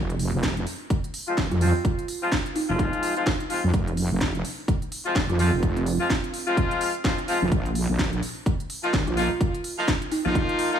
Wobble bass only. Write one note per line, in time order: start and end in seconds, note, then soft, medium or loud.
0.00 0.31 F1 loud
0.33 0.65 F1 loud
1.37 1.49 D#1 medium
1.51 1.73 F2 medium
2.69 2.91 F1 loud
3.64 3.72 F2 loud
3.74 4.09 F1 medium
4.11 4.43 F1 loud
5.15 5.27 D#1 loud
5.29 5.51 F2 medium
5.53 5.98 F1 medium
7.42 7.50 F1 medium
7.52 7.87 A#1 medium
7.89 8.21 A#1 medium
8.93 9.05 G#1 loud
9.07 9.29 A#1 medium
10.25 10.47 A#1 loud